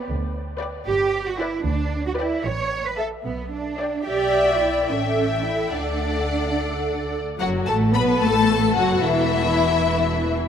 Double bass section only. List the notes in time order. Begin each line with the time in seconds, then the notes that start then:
0.08 D2
0.87 G1
1.67 D2
2.46 A1
3.26 B1
4.07 B1
4.90 A1
5.74 D2
7.41 F#1
7.70 A1
7.96 B1
8.23 A1
8.77 F#1
9.04 E1